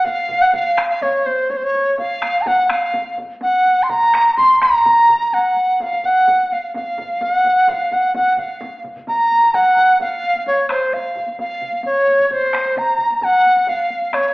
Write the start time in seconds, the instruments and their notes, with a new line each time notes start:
0.04 dizi F5, taiko low-mid, taiko mid, taiko high
0.18 taiko high
0.29 taiko low-mid, taiko mid, taiko high
0.41 dizi F#5, taiko high
0.53 dizi F5, taiko low-mid, taiko mid, taiko high
0.66 taiko high
0.78 taiko rim, taiko high
0.90 dizi F5, taiko high
1.01 dizi C#5, taiko low-mid, taiko mid, taiko high
1.14 taiko high
1.26 dizi C5, taiko high
1.38 taiko high
1.50 dizi C#5, taiko high
1.57 dizi C5
1.62 dizi C#5, taiko high
1.74 taiko high
1.86 taiko high
1.98 dizi F5, taiko, taiko low-mid, taiko high
2.11 taiko high
2.22 taiko rim, taiko high
2.35 taiko high
2.41 dizi A#5
2.46 dizi F#5, taiko low-mid, taiko high
2.58 taiko high
2.70 dizi F5, taiko rim, taiko high
2.82 taiko high
2.93 taiko low-mid, taiko high
3.06 taiko high
3.18 taiko low-mid, taiko high
3.30 taiko high
3.41 dizi F#5, taiko, taiko high
3.66 taiko high
3.78 taiko high
3.83 dizi C6
3.89 dizi A#5, taiko, taiko mid, taiko high
4.01 taiko high
4.14 taiko rim, taiko high
4.26 taiko high
4.37 dizi C6, taiko mid, taiko high
4.50 taiko high
4.61 dizi A#5, taiko rim, taiko high
4.74 taiko high
4.85 taiko mid, taiko high
4.97 taiko high
5.09 taiko mid
5.21 taiko high
5.32 dizi F#5, taiko, taiko high
5.56 taiko high
5.68 taiko high
5.80 dizi F5, taiko, taiko low-mid, taiko high
5.92 taiko low-mid, taiko high
6.04 dizi F#5, taiko low-mid, taiko high
6.16 taiko high
6.27 taiko low-mid, taiko high
6.40 taiko high
6.52 dizi F5, taiko high
6.63 taiko high
6.74 dizi F5, taiko low-mid, taiko high
6.86 taiko high
6.98 taiko low-mid, taiko high
7.10 taiko high
7.21 dizi F#5, taiko, taiko low-mid, taiko high
7.44 taiko low-mid, taiko high
7.56 taiko high
7.68 dizi F5, taiko, taiko low-mid, taiko mid, taiko high
7.80 taiko high
7.91 dizi F#5, taiko low-mid, taiko mid, taiko high
8.02 taiko high
8.14 dizi F#5, taiko low-mid, taiko mid, taiko high
8.27 taiko high
8.32 dizi F#5
8.37 dizi F5, taiko low-mid, taiko mid, taiko high
8.49 taiko high
8.61 taiko low-mid, taiko mid, taiko high
8.72 taiko high
8.84 taiko low-mid, taiko mid, taiko high
8.96 taiko low-mid, taiko mid, taiko high
9.07 dizi A#5, taiko low-mid, taiko mid, taiko high
9.19 taiko high
9.30 taiko high
9.42 taiko low-mid, taiko mid, taiko high
9.54 dizi F#5, taiko, taiko high
9.77 taiko low-mid, taiko high
9.88 taiko high
10.00 dizi F5, taiko low-mid, taiko high
10.23 taiko high
10.35 taiko low-mid, taiko high
10.46 dizi C#5, taiko, taiko low-mid, taiko high
10.70 dizi C5, taiko rim, taiko high
10.93 dizi F5, taiko low-mid, taiko high
11.15 taiko low-mid
11.27 taiko high
11.39 dizi F5, taiko, taiko high
11.61 taiko mid, taiko high
11.73 taiko high
11.84 dizi C#5, taiko mid, taiko high
12.07 taiko high
12.19 taiko mid, taiko high
12.25 dizi C#5
12.31 dizi C5, taiko, taiko mid, taiko high
12.53 taiko rim, taiko high
12.65 taiko high
12.76 dizi A#5, taiko mid, taiko high
12.99 taiko mid
13.10 taiko high
13.15 dizi A#5
13.21 dizi F#5, taiko, taiko low-mid, taiko high
13.45 taiko high
13.56 taiko low-mid, taiko high
13.67 dizi F5, taiko low-mid, taiko high
13.90 taiko high
14.02 taiko high
14.13 dizi C#5, taiko rim, taiko, taiko high